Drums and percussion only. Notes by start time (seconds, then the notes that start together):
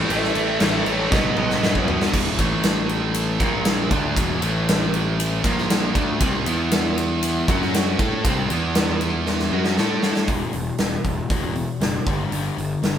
0.10 crash
0.24 snare
0.35 crash
0.60 snare, crash
0.86 crash
1.12 kick, snare
1.25 high tom
1.37 mid tom
1.51 snare
1.63 snare
1.75 kick
1.88 floor tom
2.01 snare
2.14 kick, crash
2.39 kick, ride
2.63 snare, ride
2.89 ride
3.14 ride
3.40 kick, ride
3.65 snare, ride
3.91 kick, ride
4.16 kick, ride
4.42 ride
4.69 snare, ride
4.94 ride
5.20 ride
5.44 kick, ride
5.58 snare
5.70 snare, ride
5.95 kick, ride
6.20 kick, ride
6.46 ride
6.71 snare, ride
6.98 ride
7.23 ride
7.48 kick, ride
7.62 snare
7.74 snare, ride
7.99 kick, ride
8.25 kick, ride
8.50 ride
8.75 snare, ride
9.01 ride
9.26 snare
9.39 snare
9.65 snare
9.78 snare
10.03 snare
10.16 snare
10.28 kick, open hi-hat
10.53 open hi-hat
10.78 snare, open hi-hat
11.04 kick, open hi-hat
11.30 kick, open hi-hat
11.55 open hi-hat
11.81 snare, open hi-hat
12.07 kick, open hi-hat
12.32 open hi-hat
12.58 open hi-hat
12.83 snare, open hi-hat